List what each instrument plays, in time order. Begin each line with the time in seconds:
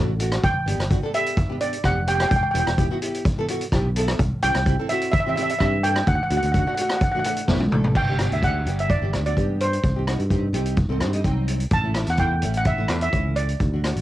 Already playing: fingered electric bass A1, nylon-string guitar A3 D4 F#4
0.19 nylon-string guitar A3 D4 F#4, closed hi-hat
0.32 cross-stick, closed hi-hat
0.44 fingered electric bass G1, steel pan G5, kick, closed hi-hat
0.66 fingered electric bass G1, nylon-string guitar B3 D4 G4, closed hi-hat
0.78 fingered electric bass G1, cross-stick, closed hi-hat
0.90 nylon-string guitar B3 D4 F#4, kick, closed hi-hat
1.02 nylon-string guitar B3 D4 A4
1.13 nylon-string guitar B3 D4 G4, steel pan E5, closed hi-hat
1.26 closed hi-hat
1.37 kick, closed hi-hat
1.49 nylon-string guitar B3 D4 G4
1.61 nylon-string guitar B3 D4 G4, steel pan D5, closed hi-hat
1.73 closed hi-hat
1.84 fingered electric bass F1, nylon-string guitar B3 D4 G4, steel pan F#5, kick, cross-stick, closed hi-hat
2.07 nylon-string guitar B3 D4 G4, steel pan G5, closed hi-hat
2.15 steel pan G5
2.20 steel pan G5, cross-stick, closed hi-hat
2.29 fingered electric bass E1, steel pan G5, kick, closed hi-hat
2.36 steel pan G5
2.43 steel pan G5
2.51 fingered electric bass E1, nylon-string guitar B3 E4 G4, steel pan G5, closed hi-hat
2.60 steel pan G5
2.67 fingered electric bass E1, cross-stick, closed hi-hat
2.78 nylon-string guitar B3 E4 G4, kick, closed hi-hat
2.91 nylon-string guitar B3 E4 F#4
3.02 nylon-string guitar B3 E4 G4, closed hi-hat
3.14 closed hi-hat
3.25 kick, closed hi-hat
3.38 nylon-string guitar B3 E4 A4
3.48 nylon-string guitar B3 E4 F#4, closed hi-hat
3.61 closed hi-hat
3.72 fingered electric bass B1, nylon-string guitar B3 E4 G4, kick, cross-stick, closed hi-hat
3.96 nylon-string guitar B3 E4 A4, closed hi-hat
4.08 cross-stick, closed hi-hat
4.19 fingered electric bass C2, kick, closed hi-hat
4.42 fingered electric bass C2, nylon-string guitar C4 E4 G4, steel pan G5, closed hi-hat
4.54 fingered electric bass C2, cross-stick, closed hi-hat
4.66 nylon-string guitar C4 E4 G4, kick, closed hi-hat
4.79 nylon-string guitar C4 E4 A4
4.89 nylon-string guitar C4 E4 F#4, steel pan E5, closed hi-hat
5.01 closed hi-hat
5.11 steel pan E5, kick, closed hi-hat
5.20 steel pan E5
5.26 nylon-string guitar C4 E4 G4, steel pan E5
5.36 nylon-string guitar C4 E4 G4, steel pan E5, closed hi-hat
5.43 steel pan E5
5.49 steel pan E5, closed hi-hat
5.59 fingered electric bass G2, nylon-string guitar C4 E4 G4, steel pan E5, kick, cross-stick, closed hi-hat
5.65 steel pan E5
5.83 nylon-string guitar C4 E4 A4, steel pan G5, closed hi-hat
5.96 cross-stick, closed hi-hat
6.07 fingered electric bass D2, steel pan F#5, kick, closed hi-hat
6.15 steel pan F#5
6.23 steel pan F#5
6.30 fingered electric bass D2, nylon-string guitar A3 D4 F#4, steel pan F#5, closed hi-hat
6.37 steel pan F#5
6.42 fingered electric bass D2, steel pan F#5, closed hi-hat
6.52 nylon-string guitar A3 D4 F#4, steel pan F#5, kick, closed hi-hat
6.59 steel pan F#5
6.67 nylon-string guitar A3 D4 F#4, steel pan F#5
6.75 nylon-string guitar A3, steel pan F#5, closed hi-hat
6.79 nylon-string guitar D4 F#4, steel pan F#5
6.89 steel pan F#5, cross-stick, closed hi-hat
6.97 steel pan F#5, closed hi-hat
7.01 steel pan F#5, kick
7.12 nylon-string guitar A3 D4 F#4, steel pan F#5
7.19 steel pan F#5
7.24 nylon-string guitar A3 D4 E4, steel pan F#5, closed hi-hat
7.37 closed hi-hat
7.48 fingered electric bass B1, nylon-string guitar A3 D4 E4, kick, snare
7.60 high tom
7.72 fingered electric bass A1, nylon-string guitar A3 D4 A4, mid tom
7.84 floor tom
7.95 fingered electric bass G1, steel pan G5, kick, crash
8.08 nylon-string guitar B3 D4 G4
8.19 nylon-string guitar B3 D4 G4, cross-stick, closed hi-hat
8.31 fingered electric bass D2, steel pan E5, closed hi-hat
8.43 nylon-string guitar B3 D4 G4, steel pan F#5, kick, closed hi-hat
8.65 fingered electric bass G1, nylon-string guitar B3 D4 G4, closed hi-hat
8.79 steel pan E5, closed hi-hat
8.90 steel pan D5, kick, closed hi-hat
9.02 fingered electric bass G1, nylon-string guitar B3 D4 G4
9.13 fingered electric bass D2, nylon-string guitar B3 D4 G4, cross-stick, closed hi-hat
9.26 nylon-string guitar B3 D4 F#4, steel pan D5, closed hi-hat
9.37 fingered electric bass G2, nylon-string guitar B3 D4 G4, kick, closed hi-hat
9.60 steel pan C5, closed hi-hat
9.73 closed hi-hat
9.84 fingered electric bass C2, kick, closed hi-hat
9.96 nylon-string guitar C4 D#4 G4
10.07 nylon-string guitar C4 D#4 F#4, cross-stick, closed hi-hat
10.19 fingered electric bass G2, closed hi-hat
10.30 nylon-string guitar C4 D#4 G4, kick, closed hi-hat
10.53 fingered electric bass C2, nylon-string guitar C4 D#4 G4, closed hi-hat
10.65 closed hi-hat
10.76 kick, closed hi-hat
10.89 fingered electric bass C2, nylon-string guitar C4 D#4 A4
11.00 fingered electric bass G2, nylon-string guitar C4 D#4 F#4 C5, cross-stick, closed hi-hat
11.13 nylon-string guitar C4 D#4 G4 D#5, closed hi-hat
11.24 fingered electric bass C2, nylon-string guitar F#3 C4 D#4 G5, kick, closed hi-hat
11.48 closed hi-hat
11.60 closed hi-hat
11.71 fingered electric bass A1, steel pan A5, kick, closed hi-hat
11.83 nylon-string guitar A3 C#4 E4
11.94 nylon-string guitar A3 C#4 E4, cross-stick, closed hi-hat
12.07 fingered electric bass E2, steel pan F#5, closed hi-hat
12.17 nylon-string guitar A3 C#4 E4, steel pan G5, kick, closed hi-hat
12.42 fingered electric bass A1, nylon-string guitar A3 C#4 E4, closed hi-hat
12.54 steel pan F#5, closed hi-hat
12.65 steel pan E5, kick, closed hi-hat
12.78 fingered electric bass A1, nylon-string guitar A3 C#4 E4
12.88 fingered electric bass E2, nylon-string guitar A3 C#4 E4, cross-stick, closed hi-hat
13.01 nylon-string guitar A3 C#4 E4, steel pan E5, closed hi-hat
13.13 fingered electric bass C#2, nylon-string guitar A3 C#4 E4, kick, closed hi-hat
13.36 steel pan D5, closed hi-hat
13.49 closed hi-hat
13.60 fingered electric bass D2, kick, closed hi-hat
13.73 nylon-string guitar A3 D4 F#4
13.84 nylon-string guitar A3 D4 F#4, cross-stick, closed hi-hat
13.96 fingered electric bass A1, closed hi-hat